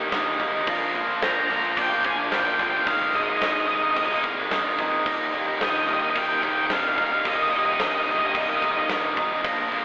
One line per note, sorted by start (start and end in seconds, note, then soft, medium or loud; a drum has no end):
0.00 0.12 D#3 medium
0.00 0.12 G3 medium
0.00 0.13 G3 medium
0.00 0.67 G3 medium
0.00 0.12 A#3 medium
0.00 0.14 A#3 medium
0.00 0.13 D#4 medium
0.00 0.14 D#4 medium
0.00 0.12 F6 loud
0.12 0.30 D#1 loud
0.12 0.53 D#2 loud
0.12 0.54 A#2 loud
0.12 0.28 D#3 loud
0.12 0.27 G3 loud
0.12 0.26 A#3 loud
0.12 0.24 D#4 loud
0.12 0.39 D#6 medium
0.12 snare loud
0.12 crash medium
0.26 0.38 D#3 medium
0.26 0.40 G3 medium
0.26 0.41 A#3 medium
0.26 0.41 D#4 medium
0.39 0.58 G#1 medium
0.39 0.55 D#3 medium
0.39 0.54 G3 medium
0.39 0.54 A#3 medium
0.39 0.52 D#4 medium
0.39 0.68 D#6 medium
0.39 kick medium
0.39 crash medium
0.53 0.67 D#3 medium
0.53 0.67 G3 medium
0.53 0.68 A#3 medium
0.53 0.66 D#4 medium
0.67 0.85 A#1 loud
0.67 1.20 A#2 medium
0.67 0.93 F3 medium
0.67 0.94 A#3 loud
0.67 0.95 D4 loud
0.67 0.96 F4 loud
0.67 1.22 A#6 loud
0.67 kick loud
0.67 crash medium
0.94 1.13 A#1 loud
0.94 1.21 F3 medium
0.94 1.11 A#3 medium
0.94 1.08 D4 medium
0.94 1.06 F4 loud
0.94 crash medium
1.08 1.22 A#3 medium
1.08 1.22 D4 medium
1.08 1.23 F4 medium
1.21 1.40 A#1 loud
1.21 1.77 A#2 loud
1.21 1.48 F3 loud
1.21 1.49 A#3 loud
1.21 1.50 D4 loud
1.21 1.51 F4 loud
1.21 1.31 A#5 loud
1.21 1.50 G6 medium
1.21 snare loud
1.21 crash medium
1.32 1.39 A#5 medium
1.40 1.47 A#5 loud
1.47 1.68 A#2 loud
1.47 1.90 F3 medium
1.47 1.66 A#3 medium
1.47 1.64 D4 loud
1.47 1.55 A#5 medium
1.47 1.77 F6 medium
1.47 crash medium
1.52 1.62 F4 medium
1.56 1.63 A#5 loud
1.63 1.93 A#3 medium
1.63 1.91 D4 medium
1.63 1.89 F4 medium
1.63 1.71 A#5 medium
1.72 1.80 A#5 medium
1.77 1.95 A#1 loud
1.77 2.31 D4 medium
1.77 2.05 G5 loud
1.77 2.32 D6 medium
1.77 kick medium
1.77 crash loud
1.90 2.05 A#3 medium
1.90 2.05 D4 medium
1.90 2.06 F4 medium
2.04 2.23 A#1 medium
2.04 2.31 F3 medium
2.04 2.33 A#3 medium
2.04 2.33 D4 medium
2.04 2.33 F4 medium
2.04 2.32 G#5 loud
2.04 kick medium
2.04 crash medium
2.17 2.32 A#3 medium
2.17 2.31 D4 medium
2.17 2.32 F4 medium
2.31 2.50 G#1 loud
2.31 2.73 A#2 loud
2.31 2.57 F3 loud
2.31 2.47 A#3 loud
2.31 2.46 D4 loud
2.31 2.44 F4 loud
2.31 2.39 G5 medium
2.31 2.58 F6 medium
2.31 snare loud
2.31 crash medium
2.40 2.46 G5 medium
2.45 2.59 A#3 medium
2.45 2.59 D4 medium
2.45 2.60 F4 medium
2.45 2.54 G5 medium
2.54 2.85 F3 medium
2.54 2.61 G5 medium
2.59 2.77 G1 medium
2.59 2.75 A#3 medium
2.59 2.72 D4 medium
2.59 2.71 F4 medium
2.59 2.68 G5 medium
2.59 kick medium
2.59 crash medium
2.68 2.85 F4 medium
2.68 2.76 G5 medium
2.74 2.87 A#3 medium
2.74 2.86 D4 medium
2.74 2.84 G5 medium
2.86 3.05 G#1 loud
2.86 3.39 G#2 medium
2.86 3.12 D#3 medium
2.86 3.13 G#3 loud
2.86 3.15 A#3 loud
2.86 3.16 D#4 loud
2.86 3.16 F5 medium
2.86 3.42 D#6 loud
2.86 kick loud
2.86 crash medium
3.13 3.33 G#1 medium
3.13 3.40 D#3 medium
3.13 3.29 G#3 medium
3.13 3.28 A#3 medium
3.13 3.26 D#4 medium
3.13 3.22 D#5 medium
3.13 crash medium
3.23 3.43 D#4 medium
3.23 3.29 D#5 medium
3.28 3.41 G#3 medium
3.28 3.43 A#3 medium
3.28 3.37 D#5 medium
3.37 3.96 G#2 medium
3.37 3.67 D#3 loud
3.37 3.45 D#5 medium
3.42 3.60 G#1 medium
3.42 3.68 G#3 loud
3.42 3.70 A#3 loud
3.42 3.71 D#4 loud
3.42 3.52 D#5 medium
3.42 3.69 F6 medium
3.42 snare loud
3.42 crash medium
3.52 3.60 D#5 medium
3.60 3.67 D#5 medium
3.68 3.88 C2 medium
3.68 4.10 D#3 medium
3.68 3.84 G#3 medium
3.68 3.83 A#3 medium
3.68 3.81 D#4 medium
3.68 3.75 D#5 medium
3.68 3.97 D#6 medium
3.68 crash medium
3.75 3.83 D#5 medium
3.82 4.11 G#3 medium
3.82 4.10 A#3 medium
3.82 4.09 D#4 medium
3.82 3.90 D#5 medium
3.91 3.98 D#5 medium
3.96 4.14 F1 medium
3.96 4.51 A#3 medium
3.96 4.05 D#5 medium
3.96 4.52 F6 medium
3.96 kick medium
3.96 crash medium
4.06 4.26 D#4 medium
4.06 4.13 D#5 medium
4.11 4.23 G#3 medium
4.11 4.25 A#3 medium
4.11 4.21 D#5 medium
4.23 4.42 C2 medium
4.23 4.50 D#3 medium
4.23 4.51 G#3 medium
4.23 4.52 A#3 medium
4.23 4.53 D#4 medium
4.23 kick medium
4.23 crash medium
4.36 4.51 G#3 medium
4.36 4.52 A#3 medium
4.36 4.53 D#4 medium
4.50 4.70 G#1 loud
4.50 4.92 G#2 loud
4.50 4.76 D#3 loud
4.50 4.65 G#3 loud
4.50 4.65 A#3 loud
4.50 4.63 D#4 loud
4.50 4.78 D#6 medium
4.50 snare loud
4.50 crash medium
4.63 4.77 G#3 medium
4.63 4.79 A#3 medium
4.63 4.80 D#4 medium
4.77 4.97 F2 medium
4.77 5.04 D#3 medium
4.77 4.93 G#3 medium
4.77 4.92 A#3 medium
4.77 4.90 D#4 medium
4.77 5.06 D#6 medium
4.77 kick medium
4.77 crash medium
4.91 5.05 G#3 medium
4.91 5.07 A#3 medium
4.91 5.07 D#4 medium
5.05 5.24 D#1 loud
5.05 5.59 D#2 medium
5.05 5.59 A#2 loud
5.05 5.32 D#3 loud
5.05 5.33 G3 loud
5.05 5.34 A#3 loud
5.05 5.35 D#4 loud
5.05 5.61 A#6 loud
5.05 kick loud
5.05 crash medium
5.32 5.52 D#1 medium
5.32 5.49 D#3 medium
5.32 5.48 G3 medium
5.32 5.47 A#3 medium
5.32 5.46 D#4 medium
5.32 crash medium
5.46 5.61 D#3 medium
5.46 5.62 G3 medium
5.46 5.62 A#3 medium
5.46 5.62 D#4 medium
5.60 5.79 D#1 medium
5.60 6.70 D#2 loud
5.60 6.16 A#2 loud
5.60 5.87 D#3 loud
5.60 5.88 G3 loud
5.60 5.90 A#3 loud
5.60 5.90 D#4 loud
5.60 5.70 D#5 loud
5.60 5.89 G6 medium
5.60 snare loud
5.60 crash loud
5.70 5.77 D#5 medium
5.78 5.86 D#5 medium
5.88 6.07 D#2 loud
5.88 6.03 D#3 medium
5.88 6.02 G3 medium
5.88 6.02 A#3 medium
5.88 6.00 D#4 medium
5.88 5.93 D#5 medium
5.88 6.16 F6 medium
5.88 crash medium
5.93 6.01 D#5 medium
6.01 6.31 D#3 medium
6.01 6.29 G3 medium
6.01 6.29 A#3 medium
6.01 6.27 D#4 medium
6.01 6.10 D#5 medium
6.11 6.19 D#5 medium
6.16 6.34 D#1 loud
6.16 6.70 A#3 medium
6.16 6.26 G5 loud
6.16 6.71 D#6 medium
6.16 kick medium
6.16 crash medium
6.26 6.44 A#3 medium
6.26 6.44 D#4 medium
6.26 6.33 G5 medium
6.31 6.41 D#3 medium
6.31 6.42 G3 medium
6.31 6.41 G5 loud
6.42 6.61 D#1 medium
6.42 6.70 D#3 medium
6.42 6.71 G3 medium
6.42 6.72 A#3 medium
6.42 6.72 D#4 medium
6.42 6.48 G5 medium
6.42 kick medium
6.42 crash medium
6.49 6.57 G5 loud
6.56 6.70 D#3 medium
6.56 6.70 G3 medium
6.56 6.72 A#3 medium
6.56 6.71 D#4 medium
6.56 6.65 G5 medium
6.66 6.72 G5 medium
6.70 6.89 C2 medium
6.70 7.12 D#2 loud
6.70 7.12 A#2 medium
6.70 6.86 D#3 loud
6.70 6.85 G3 loud
6.70 6.85 A#3 loud
6.70 6.82 D#4 loud
6.70 6.80 F5 loud
6.70 6.97 F6 medium
6.70 snare loud
6.70 crash medium
6.80 6.99 D#4 medium
6.80 6.88 F5 medium
6.85 6.96 D#3 medium
6.85 6.97 G3 medium
6.85 6.98 A#3 medium
6.89 6.96 F5 medium
6.96 7.16 D#1 medium
6.96 7.13 D#3 medium
6.96 7.12 G3 medium
6.96 7.12 A#3 medium
6.96 7.10 D#4 medium
6.96 7.04 F5 medium
6.96 7.26 F6 medium
6.96 kick medium
6.96 crash medium
7.05 7.12 F5 loud
7.11 7.25 D#3 medium
7.11 7.26 G3 medium
7.11 7.27 A#3 medium
7.11 7.27 D#4 medium
7.11 7.19 F5 medium
7.20 7.28 F5 medium
7.25 7.43 D#1 loud
7.25 7.78 D#2 loud
7.25 7.79 A#2 medium
7.25 7.51 D#3 loud
7.25 7.52 G3 loud
7.25 7.54 A#3 loud
7.25 7.54 D#4 loud
7.25 7.35 D#5 medium
7.25 7.80 D#6 loud
7.25 kick loud
7.25 crash loud
7.36 7.42 D#5 medium
7.43 7.50 D#5 medium
7.50 7.71 D#1 loud
7.50 7.68 D#3 medium
7.50 7.67 G3 medium
7.50 7.58 D#5 medium
7.50 crash medium
7.55 7.67 A#3 medium
7.55 7.65 D#4 medium
7.59 7.65 D#5 medium
7.65 7.80 D#3 medium
7.65 7.81 G3 medium
7.65 7.82 A#3 medium
7.65 7.82 D#4 medium
7.65 7.73 D#5 medium
7.73 7.81 D#5 medium
7.80 7.99 D#1 medium
7.80 8.35 D#2 loud
7.80 8.35 A#2 loud
7.80 8.07 D#3 loud
7.80 8.08 G3 loud
7.80 8.10 A#3 loud
7.80 8.10 D#4 loud
7.80 7.87 D#5 medium
7.80 8.08 F6 medium
7.80 snare loud
7.80 crash loud
7.88 7.95 D#5 medium
7.95 8.03 D#5 medium
8.03 8.11 D#5 medium
8.07 8.26 G1 loud
8.07 8.23 D#3 medium
8.07 8.22 G3 medium
8.07 8.22 A#3 medium
8.07 8.20 D#4 loud
8.07 8.19 D#5 medium
8.07 8.35 D#6 medium
8.07 crash medium
8.19 8.49 A#3 medium
8.19 8.47 D#4 medium
8.19 8.26 D#5 medium
8.23 8.50 D#3 medium
8.23 8.49 G3 medium
8.23 8.34 D#5 medium
8.34 8.53 C2 loud
8.34 8.89 A#3 medium
8.34 8.41 D#5 medium
8.34 8.90 F6 medium
8.34 kick medium
8.34 crash medium
8.42 8.49 D#5 medium
8.48 8.61 D#3 medium
8.48 8.62 G3 medium
8.48 8.63 A#3 medium
8.48 8.64 D#4 medium
8.48 8.56 D#5 medium
8.56 8.64 D#5 medium
8.62 8.80 G1 medium
8.62 8.90 D#3 medium
8.62 8.90 G3 medium
8.62 8.92 A#3 medium
8.62 8.91 D#4 medium
8.62 8.71 D#5 medium
8.62 kick medium
8.62 crash medium
8.72 8.91 D#4 medium
8.72 8.79 D#5 medium
8.76 8.89 D#3 medium
8.76 8.90 G3 medium
8.76 8.91 A#3 medium
8.76 8.87 D#5 medium
8.89 9.08 D#1 loud
8.89 9.31 D#2 loud
8.89 9.31 A#2 loud
8.89 9.05 D#3 loud
8.89 9.04 G3 loud
8.89 9.04 A#3 loud
8.89 9.02 D#4 loud
8.89 9.17 D#6 medium
8.89 snare loud
8.89 crash medium
9.03 9.16 D#3 medium
9.03 9.17 G3 medium
9.03 9.19 A#3 medium
9.03 9.19 D#4 medium
9.17 9.35 C2 medium
9.17 9.32 D#3 medium
9.17 9.31 G3 medium
9.17 9.31 A#3 medium
9.17 9.29 D#4 medium
9.17 9.45 D#6 medium
9.17 kick medium
9.17 crash medium
9.30 9.44 D#3 medium
9.30 9.44 G3 medium
9.30 9.45 A#3 medium
9.30 9.43 D#4 medium
9.44 9.63 A#1 loud
9.44 9.85 A#2 loud
9.44 9.69 F3 loud
9.44 9.71 A#3 loud
9.44 9.72 D4 loud
9.44 9.73 F4 loud
9.44 9.85 A#6 loud
9.44 kick loud
9.44 crash medium
9.71 9.85 A#1 loud
9.71 9.85 F3 medium
9.71 9.85 A#3 medium
9.71 9.85 D4 medium
9.71 9.83 F4 medium
9.71 crash medium